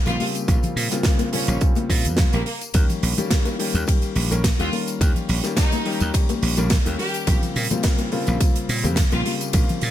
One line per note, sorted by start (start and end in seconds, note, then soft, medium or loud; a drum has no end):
0.06 0.15 A#1 medium
0.06 0.18 C#3 medium
0.06 0.18 G3 medium
0.06 0.18 A#3 medium
0.06 0.18 C4 medium
0.06 0.22 F4 loud
0.06 0.18 F4 loud
0.06 closed hi-hat medium
0.06 tambourine soft
0.06 high bongo medium
0.20 0.45 C#3 medium
0.20 0.45 G3 medium
0.20 0.45 A#3 medium
0.20 0.45 C4 medium
0.20 0.45 G4 medium
0.20 open hi-hat loud
0.20 high conga medium
0.35 closed hi-hat medium
0.35 tambourine medium
0.48 0.59 A#1 loud
0.48 0.88 C#3 medium
0.48 0.88 G3 medium
0.48 0.88 A#3 medium
0.48 0.88 C4 medium
0.48 0.89 F4 medium
0.48 kick loud
0.48 closed hi-hat medium
0.48 tambourine medium
0.63 closed hi-hat medium
0.63 tambourine soft
0.63 low conga medium
0.76 0.87 A#2 medium
0.76 open hi-hat loud
0.90 1.30 C#3 medium
0.90 1.30 G3 medium
0.90 1.30 A#3 medium
0.90 1.30 C4 medium
0.90 1.30 F4 loud
0.90 snare soft
0.90 closed hi-hat medium
0.90 tambourine medium
0.90 high bongo soft
1.03 kick loud
1.03 snare loud
1.03 closed hi-hat medium
1.03 tambourine medium
1.19 closed hi-hat medium
1.19 tambourine soft
1.19 high bongo medium
1.19 high conga medium
1.32 1.58 C#3 loud
1.32 1.58 G3 medium
1.32 1.58 A#3 medium
1.32 1.58 C4 medium
1.32 1.43 C#4 medium
1.32 1.58 F4 loud
1.32 open hi-hat loud
1.47 1.57 A#1 loud
1.47 1.57 C#4 medium
1.47 closed hi-hat medium
1.47 tambourine medium
1.61 1.87 C#3 medium
1.61 1.87 G3 medium
1.61 1.87 A#3 medium
1.61 1.87 C4 medium
1.61 1.87 F4 medium
1.61 kick loud
1.61 closed hi-hat medium
1.61 tambourine medium
1.75 closed hi-hat soft
1.75 tambourine soft
1.75 high bongo medium
1.75 high conga loud
1.89 2.07 A#2 medium
1.89 2.29 C#3 medium
1.89 2.29 G3 medium
1.89 2.29 A#3 medium
1.89 2.30 C4 medium
1.89 2.30 F4 medium
1.89 kick medium
1.89 open hi-hat loud
2.05 2.23 F2 medium
2.05 closed hi-hat medium
2.05 tambourine medium
2.17 kick loud
2.17 snare loud
2.17 closed hi-hat medium
2.17 tambourine medium
2.33 2.42 A#1 medium
2.33 2.44 C#3 medium
2.33 2.44 G3 medium
2.33 2.41 A#3 medium
2.33 2.44 A#3 medium
2.33 2.44 C4 medium
2.33 2.44 G4 medium
2.33 closed hi-hat medium
2.33 tambourine soft
2.46 2.56 A#3 medium
2.46 open hi-hat medium
2.61 closed hi-hat medium
2.61 tambourine medium
2.74 2.85 D#2 loud
2.74 3.14 D#3 medium
2.74 3.14 G3 medium
2.74 3.14 A#3 medium
2.74 3.15 C#4 medium
2.74 3.15 G4 medium
2.74 kick loud
2.74 closed hi-hat medium
2.74 ride medium
2.74 tambourine medium
2.90 closed hi-hat medium
2.90 tambourine soft
2.90 low conga medium
3.03 3.13 A#1 loud
3.03 open hi-hat loud
3.17 3.56 D#3 medium
3.17 3.56 G3 medium
3.17 3.56 A#3 medium
3.17 3.56 C#4 medium
3.17 3.56 G4 loud
3.17 closed hi-hat medium
3.17 tambourine medium
3.17 high conga medium
3.17 low conga medium
3.30 kick loud
3.30 snare loud
3.30 closed hi-hat medium
3.30 ride medium
3.30 tambourine medium
3.45 closed hi-hat soft
3.45 tambourine soft
3.45 high bongo medium
3.45 high conga medium
3.59 3.84 D#3 loud
3.59 3.84 G3 medium
3.59 3.85 A#3 medium
3.59 3.85 C#4 medium
3.59 3.85 G4 loud
3.59 open hi-hat loud
3.74 3.83 D#2 loud
3.74 closed hi-hat medium
3.74 tambourine medium
3.87 4.27 D#3 medium
3.87 4.27 G3 medium
3.87 4.27 A#3 medium
3.87 4.28 C#4 medium
3.87 4.28 G4 medium
3.87 kick loud
3.87 closed hi-hat medium
3.87 ride medium
3.87 tambourine medium
4.02 closed hi-hat medium
4.02 tambourine soft
4.16 4.26 A#1 medium
4.16 open hi-hat loud
4.30 4.50 A#1 medium
4.30 4.42 D#3 loud
4.30 4.42 G3 medium
4.30 4.42 A#3 medium
4.30 4.42 C#4 medium
4.30 4.42 A#4 loud
4.30 closed hi-hat medium
4.30 tambourine medium
4.44 kick loud
4.44 snare loud
4.44 closed hi-hat medium
4.44 ride medium
4.44 tambourine medium
4.59 4.68 D#2 medium
4.59 4.70 D#3 medium
4.59 4.70 G3 medium
4.59 4.71 A#3 medium
4.59 4.71 C#4 medium
4.59 4.75 F4 medium
4.59 4.71 G4 loud
4.59 closed hi-hat soft
4.59 tambourine soft
4.59 high bongo medium
4.72 4.97 D#3 medium
4.72 4.97 G3 medium
4.72 4.98 A#3 medium
4.72 4.98 C#4 medium
4.72 4.98 A#4 medium
4.72 open hi-hat loud
4.72 high conga medium
4.88 closed hi-hat medium
4.88 tambourine medium
5.00 5.11 D#2 loud
5.00 5.40 D#3 medium
5.00 5.41 G3 medium
5.00 5.41 A#3 medium
5.00 5.41 C#4 medium
5.00 5.41 G4 medium
5.00 kick loud
5.00 closed hi-hat medium
5.00 ride medium
5.00 tambourine medium
5.16 closed hi-hat medium
5.16 tambourine soft
5.16 low conga medium
5.29 5.39 A#1 medium
5.29 open hi-hat loud
5.44 5.82 D#3 medium
5.44 5.83 G3 medium
5.44 5.83 A#3 medium
5.44 5.83 C#4 medium
5.44 5.83 G4 loud
5.44 snare soft
5.44 closed hi-hat medium
5.44 tambourine medium
5.44 high bongo medium
5.57 6.14 D#4 loud
5.57 kick loud
5.57 snare loud
5.57 closed hi-hat medium
5.57 ride medium
5.57 tambourine medium
5.72 closed hi-hat medium
5.72 tambourine soft
5.72 high bongo medium
5.72 high conga medium
5.85 6.11 D#3 loud
5.85 6.11 G3 medium
5.85 6.11 A#3 medium
5.85 6.11 C#4 medium
5.85 6.11 G4 loud
5.85 open hi-hat medium
6.00 6.10 D#2 loud
6.00 closed hi-hat medium
6.00 tambourine medium
6.13 6.54 D#3 medium
6.13 6.54 G3 medium
6.13 6.54 A#3 medium
6.13 6.54 C#4 medium
6.13 6.54 G4 medium
6.13 kick loud
6.13 closed hi-hat medium
6.13 ride medium
6.13 tambourine medium
6.29 closed hi-hat medium
6.29 tambourine soft
6.29 high bongo medium
6.29 high conga medium
6.42 6.53 A#1 medium
6.42 open hi-hat loud
6.57 6.76 A#1 medium
6.57 6.68 D#3 loud
6.57 6.68 G3 medium
6.57 6.68 A#3 medium
6.57 6.69 C#4 medium
6.57 6.69 A#4 loud
6.57 closed hi-hat medium
6.57 tambourine medium
6.70 kick loud
6.70 snare loud
6.70 closed hi-hat medium
6.70 ride medium
6.70 tambourine medium
6.85 6.95 D#2 medium
6.85 6.97 D#3 medium
6.85 6.97 G3 medium
6.85 6.97 A#3 medium
6.85 6.97 C#4 medium
6.85 6.97 G4 loud
6.85 closed hi-hat medium
6.85 tambourine soft
6.98 7.24 D#3 medium
6.98 7.24 G3 medium
6.98 7.24 A#3 medium
6.98 7.24 C#4 medium
6.98 7.33 G4 loud
6.98 7.25 A#4 medium
6.98 open hi-hat loud
7.14 closed hi-hat medium
7.14 tambourine medium
7.27 7.38 A#1 loud
7.27 7.67 C#3 medium
7.27 7.67 G3 medium
7.27 7.67 A#3 medium
7.27 7.67 C4 medium
7.27 7.67 F4 medium
7.27 kick loud
7.27 closed hi-hat medium
7.27 ride medium
7.27 tambourine medium
7.43 closed hi-hat soft
7.43 tambourine soft
7.43 low conga medium
7.56 7.66 A#2 loud
7.56 open hi-hat loud
7.70 8.09 C#3 medium
7.70 8.09 G3 medium
7.70 8.09 A#3 medium
7.70 8.09 C4 medium
7.70 8.09 F4 loud
7.70 closed hi-hat medium
7.70 tambourine medium
7.70 high conga medium
7.70 low conga medium
7.83 kick loud
7.83 snare loud
7.83 closed hi-hat medium
7.83 ride medium
7.83 tambourine medium
7.98 closed hi-hat medium
7.98 tambourine soft
7.98 high bongo medium
7.98 high conga medium
8.12 8.37 C#3 loud
8.12 8.37 G3 medium
8.12 8.37 A#3 medium
8.12 8.38 C4 medium
8.12 8.38 F4 loud
8.12 open hi-hat medium
8.27 8.36 A#1 loud
8.27 closed hi-hat medium
8.27 tambourine medium
8.40 8.80 C#3 medium
8.40 8.80 G3 medium
8.40 8.81 A#3 medium
8.40 8.81 C4 medium
8.40 8.81 F4 medium
8.40 kick loud
8.40 closed hi-hat medium
8.40 ride medium
8.40 tambourine medium
8.55 closed hi-hat medium
8.55 tambourine soft
8.69 8.86 A#2 medium
8.69 open hi-hat loud
8.83 9.03 F2 medium
8.83 8.94 C#3 loud
8.83 8.95 G3 medium
8.83 8.95 A#3 medium
8.83 8.95 C4 medium
8.83 8.95 G4 loud
8.83 closed hi-hat medium
8.83 tambourine medium
8.96 kick loud
8.96 snare loud
8.96 closed hi-hat medium
8.96 ride medium
8.96 tambourine medium
9.12 9.21 A#1 medium
9.12 9.23 C#3 medium
9.12 9.23 G3 medium
9.12 9.23 A#3 medium
9.12 9.24 C4 medium
9.12 9.24 F4 loud
9.12 9.28 F4 medium
9.12 closed hi-hat medium
9.12 tambourine soft
9.12 high bongo medium
9.25 9.50 C#3 medium
9.25 9.50 G3 medium
9.25 9.51 A#3 medium
9.25 9.51 C4 medium
9.25 9.51 G4 medium
9.25 open hi-hat loud
9.25 high conga medium
9.41 closed hi-hat medium
9.41 tambourine medium
9.53 9.64 A#1 loud
9.53 9.91 C#3 medium
9.53 9.91 G3 medium
9.53 9.91 A#3 medium
9.53 9.91 C4 medium
9.53 9.91 F4 medium
9.53 kick loud
9.53 closed hi-hat medium
9.53 ride medium
9.53 tambourine medium
9.69 closed hi-hat medium
9.69 tambourine soft
9.69 low conga medium
9.81 9.91 A#2 medium
9.81 open hi-hat loud